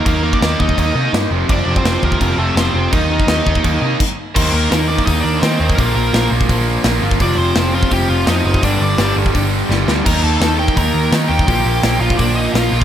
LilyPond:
<<
  \new Staff \with { instrumentName = "Lead electric guitar" } { \time 4/4 \key ees \lydian \tempo 4 = 168 <bes bes'>8. <d' d''>8. <ees' ees''>8 <ees' ees''>4 r4 | <d' d''>8. <c' c''>8. <bes bes'>4 <a a'>8 <c' c''>4 | <ees' ees''>2. r4 | <c' c''>8 <bes bes'>4 <d' d''>8 <ees' ees''>8 <d' d''>8 <c' c''>4 |
<bes bes'>8 <bes bes'>4 r2 r8 | <d' d''>8 <c' c''>4 <f' f''>8 <g' g''>8 <f' f''>8 <ees' ees''>4 | <d' d''>8 <d' d''>4 r2 r8 | <bes' bes''>8 <a' a''>4 <g' g''>8 <bes' bes''>4 r8 <g' g''>8~ |
<g' g''>4. <f' f''>8 <d' d''>8 <ees' ees''>8 <f' f''>8. r16 | }
  \new Staff \with { instrumentName = "Overdriven electric guitar" } { \clef bass \time 4/4 \key ees \lydian <ees bes ees'>8 <ees bes ees'>8 <ees bes ees'>8 <ees bes ees'>8 <ees bes ees'>8 <ees bes ees'>8 <ees bes ees'>8 <f, c f>8 | <f, c f>8 <f, c f>8 <f, c f>8 <f, c f>8 <f, c f>8 <f, c f>8 <f, c f>8 <f, c f>8 | <ees bes ees'>8 <ees bes ees'>8 <ees bes ees'>8 <ees bes ees'>8 <ees bes ees'>8 <ees bes ees'>8 r4 | <ees bes ees'>4 <ees bes ees'>8 <ees bes ees'>8 <ees bes ees'>4 <ees bes ees'>8 <ees bes ees'>8 |
<bes, f bes>4 <bes, f bes>8 <bes, f bes>8 <bes, f bes>4 <bes, f bes>8 <bes, f bes>8 | <f, c f>4 <f, c f>8 <f, c f>8 <f, c f>4 <f, c f>8 <f, c f>8 | <g, d g>4 <g, d g>8 <g, d g>8 <g, d g>4 <g, d g>8 <g, d g>8 | <ees bes ees'>4 <ees bes ees'>8 <ees bes ees'>8 <ees bes ees'>4 <ees bes ees'>8 <ees bes ees'>8 |
<bes, f bes>4 <bes, f bes>8 <bes, f bes>8 <bes, f bes>4 <bes, f bes>8 <bes, f bes>8 | }
  \new Staff \with { instrumentName = "Overdriven electric guitar" } { \clef bass \time 4/4 \key ees \lydian <ees bes ees'>2 <ees bes ees'>8 <ees bes ees'>4 <f, c f>8~ | <f, c f>2 <f, c f>8 <f, c f>4 r8 | <ees bes ees'>2~ <ees bes ees'>8 <ees bes ees'>8 r4 | <ees bes ees'>4 <ees bes ees'>8 <ees bes ees'>8 <ees bes ees'>4 <ees bes ees'>8 <ees bes ees'>8 |
<bes, f bes>4 <bes, f bes>8 <bes, f bes>8 <bes, f bes>4 <bes, f bes>8 <bes, f bes>8 | <f, c f>4 <f, c f>8 <f, c f>8 <f, c f>4 <f, c f>8 <f, c f>8 | <g, d g>4 <g, d g>8 <g, d g>8 <g, d g>4 <g, d g>8 <g, d g>8 | <ees bes ees'>4 <ees bes ees'>8 <ees bes ees'>8 <ees bes ees'>4 <ees bes ees'>8 <ees bes ees'>8 |
<bes, f bes>4 <bes, f bes>8 <bes, f bes>8 <bes, f bes>4 <bes, f bes>8 <bes, f bes>8 | }
  \new Staff \with { instrumentName = "Picked electric bass" } { \clef bass \time 4/4 \key ees \lydian ees,4 ees,8 ees,8 ees,8 c8 g,8 f,,8 | f,,8 f,,8 f,,8 ees,8 f,,8 f,,8 f,,8 f,,8 | ees,4 ees,8 ees,8 ees,8 c8 r4 | ees,8 ees,8 ees,4 ees,8 ees,8 ees8 ees,8 |
bes,,8 bes,,8 bes,,8 bes,,8 bes,,4 bes,,8 g,,8 | f,,8 f,,8 f,,4 f,,8 f,,8 f,8 fis,,8 | g,,8 g,,8 g,,8 g,,8 g,,4 g,,8 d,8 | ees,8 ees,8 ees,4 ees,8 ees,8 ees8 ees,8 |
bes,,8 bes,,8 bes,,8 bes,,8 bes,,4 bes,,8 bes,,8 | }
  \new DrumStaff \with { instrumentName = "Drums" } \drummode { \time 4/4 <cymc bd>8. bd16 <cymc sn>8 bd16 bd16 <cymc bd>4 <cymc sn>4 | <cymc bd>8. bd16 <cymc sn>8 bd16 bd16 <cymc bd>4 <cymc sn>4 | <cymc bd>8. bd16 <cymc sn>8 bd16 bd16 <cymc bd>4 <cymc bd>4 | <cymc bd>4 <hho sn>8. bd16 <hho bd>4 <hho sn>8. bd16 |
<hho bd>4 <hho sn>8. bd16 <hho bd>4 <hho sn>8. bd16 | <hho bd>4 <hho sn>8. bd16 <hho bd>4 <hho sn>8. bd16 | <hho bd>4 <hho sn>8. bd16 <hho bd>4 sn8 sn8 | <cymc bd>4 <hho sn>8. bd16 <hho bd>4 <hho sn>8. bd16 |
<hho bd>4 <hho sn>8. bd16 <hho bd>4 <hho sn>4 | }
>>